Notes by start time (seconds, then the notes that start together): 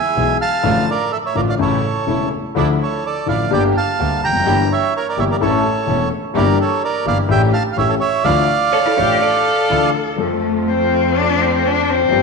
Already playing: E5 G#5
0.16 B1 B2 E3 G#3 B3 E4 G#4
0.41 F5 A5
0.63 A1 A2 D3 F3 A3 D4 F4
0.91 A#4 D5
1.12 A4 E5
1.26 C#5 E5
1.35 A1 A2 D3 F3 A3 D4 F4 A#4 D5
1.49 D5 F5
1.59 A1 A2 C#3 E3 A3 C#4 E4 A4 C#5
2.07 E1 E2 C#3 E3 A3 C#4 E4
2.55 D2 D3 F3 A3 D4 E4 A4 D5
2.83 A4 C#5
3.06 A4 D5
3.26 A1 A2 D3 F3 A3 D4 E4 D5 F5
3.50 G1 G2 D3 G3 A#3 D4 G4 D5 G5
3.77 F5 A5
3.99 D2 D3 G3 A#3 D4 G4
4.24 F1 G5 A#5
4.28 E2
4.33 F2
4.40 F#2
4.46 G1 G2 E3 G3 A#3 E4 G4
4.72 C#5 E5
4.97 A#4 C#5
5.09 A#4 D5
5.17 G1 G2 E3 G3 A#3 E4 G4 C#5 E5
5.31 A#4 D5
5.41 A1 A2 E3 A3 C#4 E4 A4 C#5
5.87 E1 E2 E3 A3 C#4 E4 A4
6.34 G1 G2 E3 G3 A#3 E4 G4 A#4 D5
6.61 A4 C#5
6.85 A#4 D5
7.06 G1 G2 E3 G3 A#3 E4 G4 D5 F5
7.29 A1 A2 E3 A3 D4 G4 E5 G5
7.53 F5 A5
7.73 E3 A3 G4 F5
7.77 A1 A2 A3 C#4 G4 C#5 E5
7.89 A4 C#5
8.00 C#5 E5
8.24 D2 D3 E3 F3 A3 D4 E4 F4 D5 F5
8.72 A4 C#5
8.85 E4 A4
8.97 A1 A2 E3 F3 A3 D4 E4 F4 G4 C#5
9.22 A4 D5
9.69 D2 D3 E3 F3 A3 D4 E4 F4
10.16 F2 F3 A3 C4 F4
10.21 A4
10.68 C4
11.16 D4
11.42 C4
11.65 D4
11.89 C4
12.08 G1 G2 F3 A#3 C4 F4 G4